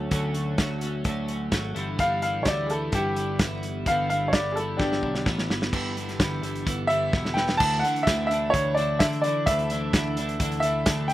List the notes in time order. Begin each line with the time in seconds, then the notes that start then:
Already playing: F#3 A3 C#4 F#4 A4
0.11 D2 D3 F#3 A3 C#4 F#4, kick, closed hi-hat
0.34 A3 C#4 F#4, closed hi-hat
0.58 D2 F#3 A3 C#4 F#4, kick, snare, closed hi-hat
0.81 A3 C#4 F#4, closed hi-hat
1.04 D2 D3 F#3 A3 C#4 F#4, kick, closed hi-hat
1.28 A3 C#4 F#4, closed hi-hat
1.52 G#1 F#3 A3 C#4 F#4, kick, snare, closed hi-hat
1.74 G1 G2 D3 E3 G3 B3 E4, closed hi-hat
1.99 G2 D3 E3 G3 B3 E4 F5, kick, closed hi-hat
2.22 E3 G3 B3 E4 F5, closed hi-hat
2.43 D2 E3 G3 B3 C#5, kick, snare, closed hi-hat
2.47 E4 D5
2.66 B3 E4 G#4, closed hi-hat
2.71 E3 G3 A4
2.92 G1 G2 D3 E3 G3 B3 E4 G4, kick, closed hi-hat
3.15 E3 G3 B3 E4, closed hi-hat
3.39 G1 E3 G3 B3 E4, kick, snare, closed hi-hat
3.63 closed hi-hat
3.86 G1 G2 D3 E3 G3 B3 E4 F5, kick, closed hi-hat
4.09 E3 G3 B3 E4 F5, closed hi-hat
4.28 C#5
4.33 G1 E3 G3 B3 E4 D5, kick, snare, closed hi-hat
4.52 G#4 A4
4.57 E3 G3 B3 E4, closed hi-hat
4.77 G1 G2 D3 D4 G4, kick, snare
4.81 E3 G3 B3 E4
4.92 snare
5.03 B1 E3 G3 B3 E4, kick
5.15 snare
5.25 A1 E3 G3 B3 E4, kick, snare
5.39 snare
5.50 G1, snare
5.62 snare
5.72 G1 G2 D3 E3 G3 B3 E4, kick, crash
5.96 E3 G3 B3 E4, closed hi-hat
6.09 snare, closed hi-hat
6.19 G1 G2 D3 E3 G3 B3 E4, kick, snare, closed hi-hat
6.42 G1 E3 G3 B3 E4, closed hi-hat
6.56 closed hi-hat
6.65 G1 E3 G3 B3 E4, kick, closed hi-hat
6.87 G2 D3 E3 G3 B3 E4 E5, closed hi-hat
7.12 E1 E3 G3 B3 E4, kick, snare
7.25 snare
7.34 G3 B3 E4 G5, snare
7.38 E3
7.49 snare
7.57 D2 D3 E3 A3 D4 E4 A5, kick, crash
7.79 D3 F#5
7.84 E3 A3 D4 E4, closed hi-hat
7.96 closed hi-hat
8.03 D3 E5
8.07 D2 E3 A3 D4 E4, kick, snare, closed hi-hat
8.27 D3 E3 E5
8.31 A3 D4 E4, closed hi-hat
8.50 D3 E3 C#5, kick
8.54 D2 A3 D4 E4, closed hi-hat
8.74 D3 E3 A3 D4 D5, closed hi-hat
8.79 E4
8.99 D3 E3 A3 D4 E4 E5, kick, snare, closed hi-hat
9.12 closed hi-hat
9.22 D3 E3 A3 D4 E4 D5, closed hi-hat
9.46 D2 D3 E3 A3 D4 E4 E5, kick, closed hi-hat
9.59 closed hi-hat
9.70 D3 E3 A3 D4 E4, closed hi-hat
9.93 D2 D3 E3 A3 D4 E4, kick, snare, closed hi-hat
10.17 D3 E3 A3 D4 E4, closed hi-hat
10.29 closed hi-hat
10.40 D2 D3 E3 A3 D4 E4, kick, closed hi-hat
10.52 closed hi-hat
10.60 D3 E3 E5, closed hi-hat
10.64 A3 D4 E4
10.86 D2 D3 E3 A3 D4 E4, kick, snare, closed hi-hat
11.08 G5, closed hi-hat